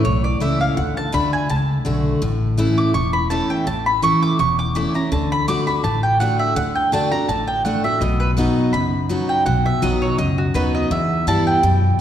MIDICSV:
0, 0, Header, 1, 4, 480
1, 0, Start_track
1, 0, Key_signature, 2, "major"
1, 0, Tempo, 362100
1, 1029, Time_signature, 4, 2, 24, 8
1, 15918, End_track
2, 0, Start_track
2, 0, Title_t, "Mandolin"
2, 0, Program_c, 0, 25
2, 60, Note_on_c, 0, 73, 83
2, 314, Note_off_c, 0, 73, 0
2, 319, Note_on_c, 0, 74, 100
2, 538, Note_off_c, 0, 74, 0
2, 551, Note_on_c, 0, 76, 88
2, 800, Note_off_c, 0, 76, 0
2, 805, Note_on_c, 0, 77, 104
2, 1017, Note_off_c, 0, 77, 0
2, 1022, Note_on_c, 0, 78, 75
2, 1275, Note_off_c, 0, 78, 0
2, 1287, Note_on_c, 0, 81, 108
2, 1502, Note_off_c, 0, 81, 0
2, 1510, Note_on_c, 0, 83, 113
2, 1758, Note_off_c, 0, 83, 0
2, 1763, Note_on_c, 0, 80, 96
2, 1979, Note_off_c, 0, 80, 0
2, 1989, Note_on_c, 0, 81, 89
2, 2673, Note_off_c, 0, 81, 0
2, 3682, Note_on_c, 0, 86, 93
2, 3893, Note_off_c, 0, 86, 0
2, 3898, Note_on_c, 0, 85, 98
2, 4145, Note_off_c, 0, 85, 0
2, 4151, Note_on_c, 0, 83, 100
2, 4370, Note_off_c, 0, 83, 0
2, 4375, Note_on_c, 0, 81, 100
2, 4630, Note_off_c, 0, 81, 0
2, 4640, Note_on_c, 0, 79, 96
2, 4857, Note_off_c, 0, 79, 0
2, 4866, Note_on_c, 0, 81, 82
2, 5113, Note_off_c, 0, 81, 0
2, 5119, Note_on_c, 0, 83, 109
2, 5336, Note_off_c, 0, 83, 0
2, 5346, Note_on_c, 0, 85, 96
2, 5595, Note_off_c, 0, 85, 0
2, 5601, Note_on_c, 0, 86, 113
2, 5817, Note_off_c, 0, 86, 0
2, 5828, Note_on_c, 0, 85, 94
2, 6076, Note_off_c, 0, 85, 0
2, 6082, Note_on_c, 0, 86, 105
2, 6297, Note_off_c, 0, 86, 0
2, 6308, Note_on_c, 0, 83, 93
2, 6556, Note_off_c, 0, 83, 0
2, 6564, Note_on_c, 0, 82, 92
2, 6778, Note_off_c, 0, 82, 0
2, 6790, Note_on_c, 0, 81, 84
2, 7037, Note_off_c, 0, 81, 0
2, 7051, Note_on_c, 0, 83, 118
2, 7260, Note_off_c, 0, 83, 0
2, 7266, Note_on_c, 0, 86, 109
2, 7510, Note_off_c, 0, 86, 0
2, 7515, Note_on_c, 0, 83, 97
2, 7731, Note_off_c, 0, 83, 0
2, 7737, Note_on_c, 0, 81, 97
2, 7989, Note_off_c, 0, 81, 0
2, 7994, Note_on_c, 0, 79, 96
2, 8213, Note_off_c, 0, 79, 0
2, 8219, Note_on_c, 0, 78, 87
2, 8469, Note_off_c, 0, 78, 0
2, 8474, Note_on_c, 0, 76, 99
2, 8694, Note_off_c, 0, 76, 0
2, 8699, Note_on_c, 0, 78, 87
2, 8948, Note_off_c, 0, 78, 0
2, 8954, Note_on_c, 0, 79, 100
2, 9174, Note_off_c, 0, 79, 0
2, 9187, Note_on_c, 0, 81, 94
2, 9426, Note_off_c, 0, 81, 0
2, 9431, Note_on_c, 0, 82, 111
2, 9652, Note_off_c, 0, 82, 0
2, 9658, Note_on_c, 0, 81, 90
2, 9903, Note_off_c, 0, 81, 0
2, 9909, Note_on_c, 0, 79, 101
2, 10131, Note_off_c, 0, 79, 0
2, 10136, Note_on_c, 0, 78, 85
2, 10389, Note_off_c, 0, 78, 0
2, 10394, Note_on_c, 0, 76, 96
2, 10614, Note_off_c, 0, 76, 0
2, 10615, Note_on_c, 0, 75, 80
2, 10862, Note_off_c, 0, 75, 0
2, 10868, Note_on_c, 0, 71, 98
2, 11006, Note_off_c, 0, 71, 0
2, 11570, Note_on_c, 0, 83, 99
2, 12264, Note_off_c, 0, 83, 0
2, 12315, Note_on_c, 0, 79, 104
2, 12531, Note_off_c, 0, 79, 0
2, 12536, Note_on_c, 0, 78, 83
2, 12792, Note_off_c, 0, 78, 0
2, 12801, Note_on_c, 0, 76, 97
2, 13019, Note_off_c, 0, 76, 0
2, 13025, Note_on_c, 0, 75, 94
2, 13274, Note_off_c, 0, 75, 0
2, 13280, Note_on_c, 0, 73, 96
2, 13493, Note_off_c, 0, 73, 0
2, 13499, Note_on_c, 0, 75, 103
2, 13754, Note_off_c, 0, 75, 0
2, 13760, Note_on_c, 0, 66, 74
2, 13979, Note_off_c, 0, 66, 0
2, 13982, Note_on_c, 0, 71, 91
2, 14236, Note_off_c, 0, 71, 0
2, 14245, Note_on_c, 0, 75, 101
2, 14462, Note_off_c, 0, 75, 0
2, 14465, Note_on_c, 0, 76, 83
2, 14914, Note_off_c, 0, 76, 0
2, 14952, Note_on_c, 0, 81, 111
2, 15196, Note_off_c, 0, 81, 0
2, 15202, Note_on_c, 0, 79, 96
2, 15918, Note_off_c, 0, 79, 0
2, 15918, End_track
3, 0, Start_track
3, 0, Title_t, "Steel-string acoustic guitar"
3, 0, Program_c, 1, 25
3, 63, Note_on_c, 1, 40, 86
3, 536, Note_on_c, 1, 52, 80
3, 546, Note_on_c, 1, 57, 88
3, 551, Note_on_c, 1, 61, 90
3, 558, Note_on_c, 1, 64, 94
3, 980, Note_off_c, 1, 40, 0
3, 999, Note_off_c, 1, 52, 0
3, 1004, Note_off_c, 1, 57, 0
3, 1007, Note_off_c, 1, 61, 0
3, 1010, Note_off_c, 1, 64, 0
3, 1022, Note_on_c, 1, 50, 93
3, 1474, Note_off_c, 1, 50, 0
3, 1490, Note_on_c, 1, 50, 88
3, 1498, Note_on_c, 1, 57, 86
3, 1508, Note_on_c, 1, 62, 102
3, 1512, Note_on_c, 1, 66, 101
3, 1956, Note_off_c, 1, 50, 0
3, 1960, Note_off_c, 1, 57, 0
3, 1965, Note_off_c, 1, 62, 0
3, 1967, Note_off_c, 1, 66, 0
3, 1981, Note_on_c, 1, 45, 86
3, 2450, Note_on_c, 1, 50, 84
3, 2462, Note_on_c, 1, 57, 86
3, 2466, Note_on_c, 1, 62, 92
3, 2471, Note_on_c, 1, 66, 95
3, 2898, Note_off_c, 1, 45, 0
3, 2915, Note_off_c, 1, 50, 0
3, 2921, Note_off_c, 1, 57, 0
3, 2923, Note_off_c, 1, 62, 0
3, 2926, Note_off_c, 1, 66, 0
3, 2939, Note_on_c, 1, 45, 94
3, 3413, Note_on_c, 1, 52, 85
3, 3422, Note_on_c, 1, 57, 94
3, 3428, Note_on_c, 1, 61, 98
3, 3434, Note_on_c, 1, 64, 99
3, 3857, Note_off_c, 1, 45, 0
3, 3877, Note_off_c, 1, 52, 0
3, 3881, Note_off_c, 1, 57, 0
3, 3884, Note_off_c, 1, 61, 0
3, 3887, Note_off_c, 1, 64, 0
3, 3901, Note_on_c, 1, 40, 86
3, 4377, Note_on_c, 1, 52, 81
3, 4387, Note_on_c, 1, 57, 90
3, 4392, Note_on_c, 1, 61, 88
3, 4398, Note_on_c, 1, 64, 94
3, 4818, Note_off_c, 1, 40, 0
3, 4838, Note_off_c, 1, 52, 0
3, 4843, Note_off_c, 1, 57, 0
3, 4846, Note_off_c, 1, 61, 0
3, 4849, Note_off_c, 1, 64, 0
3, 4862, Note_on_c, 1, 45, 85
3, 5334, Note_on_c, 1, 52, 97
3, 5339, Note_on_c, 1, 57, 88
3, 5348, Note_on_c, 1, 61, 97
3, 5357, Note_on_c, 1, 64, 103
3, 5778, Note_off_c, 1, 45, 0
3, 5797, Note_off_c, 1, 52, 0
3, 5799, Note_off_c, 1, 57, 0
3, 5804, Note_off_c, 1, 61, 0
3, 5808, Note_off_c, 1, 64, 0
3, 5822, Note_on_c, 1, 40, 94
3, 6297, Note_on_c, 1, 52, 88
3, 6307, Note_on_c, 1, 57, 86
3, 6312, Note_on_c, 1, 61, 89
3, 6318, Note_on_c, 1, 64, 89
3, 6537, Note_off_c, 1, 64, 0
3, 6548, Note_off_c, 1, 52, 0
3, 6553, Note_off_c, 1, 57, 0
3, 6553, Note_on_c, 1, 64, 57
3, 6555, Note_off_c, 1, 61, 0
3, 6575, Note_on_c, 1, 61, 53
3, 6738, Note_off_c, 1, 40, 0
3, 6771, Note_off_c, 1, 64, 0
3, 6782, Note_off_c, 1, 61, 0
3, 6783, Note_on_c, 1, 50, 87
3, 7246, Note_off_c, 1, 50, 0
3, 7262, Note_on_c, 1, 50, 87
3, 7267, Note_on_c, 1, 57, 100
3, 7274, Note_on_c, 1, 62, 100
3, 7281, Note_on_c, 1, 66, 110
3, 7504, Note_off_c, 1, 66, 0
3, 7510, Note_off_c, 1, 50, 0
3, 7513, Note_off_c, 1, 57, 0
3, 7517, Note_off_c, 1, 62, 0
3, 7520, Note_on_c, 1, 66, 61
3, 7540, Note_on_c, 1, 62, 52
3, 7734, Note_off_c, 1, 66, 0
3, 7744, Note_off_c, 1, 62, 0
3, 7746, Note_on_c, 1, 45, 93
3, 8222, Note_on_c, 1, 50, 84
3, 8232, Note_on_c, 1, 57, 83
3, 8236, Note_on_c, 1, 62, 89
3, 8242, Note_on_c, 1, 66, 86
3, 8661, Note_off_c, 1, 45, 0
3, 8681, Note_off_c, 1, 50, 0
3, 8686, Note_off_c, 1, 57, 0
3, 8688, Note_off_c, 1, 62, 0
3, 8691, Note_off_c, 1, 66, 0
3, 8700, Note_on_c, 1, 50, 100
3, 9159, Note_off_c, 1, 50, 0
3, 9175, Note_on_c, 1, 50, 92
3, 9187, Note_on_c, 1, 57, 87
3, 9191, Note_on_c, 1, 62, 108
3, 9197, Note_on_c, 1, 66, 98
3, 9416, Note_off_c, 1, 66, 0
3, 9428, Note_off_c, 1, 50, 0
3, 9432, Note_on_c, 1, 66, 61
3, 9434, Note_off_c, 1, 57, 0
3, 9435, Note_off_c, 1, 62, 0
3, 9456, Note_on_c, 1, 62, 51
3, 9651, Note_off_c, 1, 66, 0
3, 9662, Note_off_c, 1, 62, 0
3, 9665, Note_on_c, 1, 45, 88
3, 10138, Note_on_c, 1, 50, 84
3, 10146, Note_on_c, 1, 57, 89
3, 10154, Note_on_c, 1, 62, 84
3, 10161, Note_on_c, 1, 66, 94
3, 10386, Note_off_c, 1, 66, 0
3, 10389, Note_off_c, 1, 50, 0
3, 10393, Note_off_c, 1, 57, 0
3, 10397, Note_off_c, 1, 62, 0
3, 10402, Note_on_c, 1, 66, 57
3, 10420, Note_on_c, 1, 62, 49
3, 10581, Note_off_c, 1, 45, 0
3, 10616, Note_off_c, 1, 66, 0
3, 10625, Note_off_c, 1, 62, 0
3, 10625, Note_on_c, 1, 47, 95
3, 11091, Note_on_c, 1, 54, 85
3, 11102, Note_on_c, 1, 59, 95
3, 11111, Note_on_c, 1, 63, 107
3, 11115, Note_on_c, 1, 66, 98
3, 11541, Note_off_c, 1, 47, 0
3, 11556, Note_off_c, 1, 54, 0
3, 11562, Note_off_c, 1, 59, 0
3, 11567, Note_off_c, 1, 63, 0
3, 11569, Note_off_c, 1, 66, 0
3, 11584, Note_on_c, 1, 42, 93
3, 12055, Note_on_c, 1, 54, 76
3, 12063, Note_on_c, 1, 59, 86
3, 12070, Note_on_c, 1, 63, 89
3, 12074, Note_on_c, 1, 66, 84
3, 12502, Note_off_c, 1, 42, 0
3, 12519, Note_off_c, 1, 54, 0
3, 12523, Note_off_c, 1, 59, 0
3, 12527, Note_off_c, 1, 63, 0
3, 12529, Note_off_c, 1, 66, 0
3, 12543, Note_on_c, 1, 47, 93
3, 13018, Note_on_c, 1, 54, 101
3, 13026, Note_on_c, 1, 59, 96
3, 13032, Note_on_c, 1, 63, 92
3, 13037, Note_on_c, 1, 66, 100
3, 13462, Note_off_c, 1, 47, 0
3, 13481, Note_off_c, 1, 54, 0
3, 13485, Note_off_c, 1, 59, 0
3, 13488, Note_off_c, 1, 63, 0
3, 13491, Note_off_c, 1, 66, 0
3, 13502, Note_on_c, 1, 42, 91
3, 13975, Note_on_c, 1, 54, 79
3, 13987, Note_on_c, 1, 59, 93
3, 13990, Note_on_c, 1, 63, 86
3, 13997, Note_on_c, 1, 66, 94
3, 14422, Note_off_c, 1, 42, 0
3, 14440, Note_off_c, 1, 54, 0
3, 14446, Note_off_c, 1, 59, 0
3, 14448, Note_off_c, 1, 63, 0
3, 14451, Note_off_c, 1, 66, 0
3, 14462, Note_on_c, 1, 40, 95
3, 14940, Note_on_c, 1, 52, 97
3, 14947, Note_on_c, 1, 55, 101
3, 14954, Note_on_c, 1, 59, 103
3, 14961, Note_on_c, 1, 64, 111
3, 15383, Note_off_c, 1, 40, 0
3, 15403, Note_off_c, 1, 52, 0
3, 15407, Note_off_c, 1, 55, 0
3, 15410, Note_off_c, 1, 59, 0
3, 15414, Note_off_c, 1, 64, 0
3, 15420, Note_on_c, 1, 47, 94
3, 15918, Note_off_c, 1, 47, 0
3, 15918, End_track
4, 0, Start_track
4, 0, Title_t, "Upright bass"
4, 0, Program_c, 2, 32
4, 73, Note_on_c, 2, 35, 91
4, 479, Note_off_c, 2, 35, 0
4, 547, Note_on_c, 2, 37, 83
4, 955, Note_off_c, 2, 37, 0
4, 1021, Note_on_c, 2, 38, 99
4, 1319, Note_off_c, 2, 38, 0
4, 1503, Note_on_c, 2, 38, 91
4, 1912, Note_off_c, 2, 38, 0
4, 1984, Note_on_c, 2, 37, 87
4, 2393, Note_off_c, 2, 37, 0
4, 2462, Note_on_c, 2, 35, 83
4, 2871, Note_off_c, 2, 35, 0
4, 2945, Note_on_c, 2, 33, 93
4, 3537, Note_off_c, 2, 33, 0
4, 3902, Note_on_c, 2, 28, 91
4, 4495, Note_off_c, 2, 28, 0
4, 4861, Note_on_c, 2, 33, 88
4, 5454, Note_off_c, 2, 33, 0
4, 5823, Note_on_c, 2, 28, 87
4, 6416, Note_off_c, 2, 28, 0
4, 6781, Note_on_c, 2, 38, 102
4, 7374, Note_off_c, 2, 38, 0
4, 7739, Note_on_c, 2, 33, 98
4, 8333, Note_off_c, 2, 33, 0
4, 8691, Note_on_c, 2, 38, 93
4, 9288, Note_off_c, 2, 38, 0
4, 9654, Note_on_c, 2, 33, 91
4, 10250, Note_off_c, 2, 33, 0
4, 10615, Note_on_c, 2, 35, 92
4, 11212, Note_off_c, 2, 35, 0
4, 11580, Note_on_c, 2, 30, 90
4, 12175, Note_off_c, 2, 30, 0
4, 12542, Note_on_c, 2, 35, 101
4, 12840, Note_off_c, 2, 35, 0
4, 13019, Note_on_c, 2, 35, 86
4, 13431, Note_off_c, 2, 35, 0
4, 13500, Note_on_c, 2, 37, 89
4, 13912, Note_off_c, 2, 37, 0
4, 13979, Note_on_c, 2, 39, 84
4, 14392, Note_off_c, 2, 39, 0
4, 14457, Note_on_c, 2, 40, 89
4, 14758, Note_off_c, 2, 40, 0
4, 14940, Note_on_c, 2, 43, 87
4, 15353, Note_off_c, 2, 43, 0
4, 15420, Note_on_c, 2, 42, 91
4, 15833, Note_off_c, 2, 42, 0
4, 15918, End_track
0, 0, End_of_file